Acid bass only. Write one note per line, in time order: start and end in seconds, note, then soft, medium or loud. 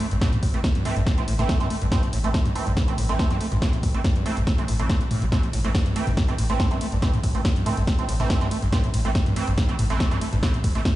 0.00 0.06 A3 medium
0.11 0.17 G2 loud
0.21 0.28 A2 loud
0.33 0.38 A2 medium
0.43 0.49 A2 medium
0.54 0.57 A3 loud
0.64 0.68 G2 loud
0.75 0.83 G2 loud
0.85 0.91 A3 medium
0.96 1.02 G2 loud
1.07 1.13 A2 loud
1.18 1.23 A2 medium
1.28 1.34 A2 medium
1.39 1.42 A3 loud
1.49 1.53 G2 loud
1.60 1.69 G2 loud
1.70 1.77 A3 medium
1.82 1.87 G2 loud
1.92 1.98 A2 loud
2.03 2.08 A2 medium
2.13 2.19 A2 medium
2.24 2.27 A3 loud
2.34 2.38 G2 loud
2.45 2.54 G2 loud
2.55 2.62 A3 medium
2.67 2.72 G2 loud
2.77 2.83 A2 loud
2.88 2.93 A2 medium
2.98 3.04 A2 medium
3.09 3.13 A3 loud
3.19 3.23 G2 loud
3.31 3.39 G2 loud
3.41 3.47 A3 medium
3.52 3.57 G2 loud
3.62 3.68 A2 loud
3.73 3.79 A2 medium
3.83 3.89 A2 medium
3.94 3.98 A3 loud
4.04 4.08 G2 loud
4.16 4.24 G2 loud
4.26 4.32 A3 medium
4.37 4.42 G2 loud
4.47 4.53 A2 loud
4.58 4.64 A2 medium
4.68 4.74 A2 medium
4.79 4.83 A2 medium
4.89 4.96 A2 loud
5.01 5.04 E3 loud
5.11 5.23 A2 medium
5.22 5.25 C4 loud
5.32 5.38 A2 loud
5.43 5.49 A2 medium
5.53 5.59 A2 medium
5.64 5.68 A3 loud
5.75 5.78 G2 loud
5.86 5.94 G2 loud
5.96 6.02 A3 medium
6.07 6.13 G2 loud
6.17 6.23 A2 loud
6.28 6.34 A2 medium
6.38 6.45 A2 medium
6.50 6.53 A3 loud
6.60 6.63 G2 loud
6.71 6.79 G2 loud
6.81 6.87 A3 medium
6.92 6.98 G2 loud
7.02 7.08 A2 loud
7.13 7.19 A2 medium
7.24 7.30 A2 medium
7.35 7.38 A3 loud
7.45 7.49 G2 loud
7.56 7.64 G2 loud
7.66 7.72 A3 medium
7.77 7.83 G2 loud
7.87 7.94 A2 loud
7.99 8.04 A2 medium
8.09 8.15 A2 medium
8.20 8.23 A3 loud
8.30 8.34 G2 loud
8.41 8.49 G2 loud
8.51 8.57 A3 medium
8.62 8.68 G2 loud
8.72 8.79 A2 loud
8.84 8.89 A2 medium
8.94 9.00 A2 medium
9.05 9.08 A3 loud
9.15 9.19 G2 loud
9.26 9.35 G2 loud
9.36 9.42 A3 medium
9.48 9.53 G2 loud
9.58 9.64 A2 loud
9.69 9.74 A2 medium
9.79 9.85 A2 medium
9.90 9.93 A3 loud
10.00 10.04 G2 loud
10.11 10.20 G2 loud
10.21 10.28 A3 medium
10.33 10.38 G2 loud
10.43 10.49 A2 loud
10.54 10.59 A2 medium
10.64 10.70 A2 medium
10.75 10.79 A3 loud
10.85 10.89 G2 loud